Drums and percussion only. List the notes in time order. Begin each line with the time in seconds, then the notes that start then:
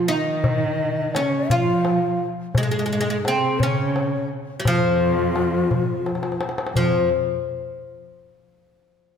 0.44 darbuka dum
1.15 darbuka tek
1.50 darbuka dum
1.85 darbuka tek
2.55 darbuka dum
3.25 darbuka tek
3.60 darbuka dum
3.96 darbuka tek
4.65 darbuka dum
5.00 darbuka ka
5.36 darbuka tek
5.71 darbuka dum
6.06 darbuka tek
6.15 darbuka ka
6.23 darbuka tek
6.32 darbuka ka
6.41 darbuka tek
6.49 darbuka ka
6.58 darbuka tek
6.67 darbuka ka
6.76 darbuka dum